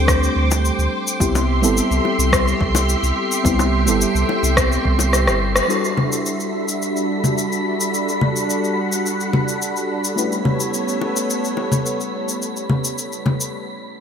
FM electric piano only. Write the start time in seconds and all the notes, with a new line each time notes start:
Already playing: G3 A3 C4 D4 G4 A4
1.20 G3 B3 C4 E4 G4
1.62 G3 B3 C4 E4 A4
3.44 G3 B3 C4 E4 G4
3.86 G3 B3 C4 E4 A4
5.68 G3 D4 E4 F#4 A4
10.16 A3 C#4 E4 G4 B4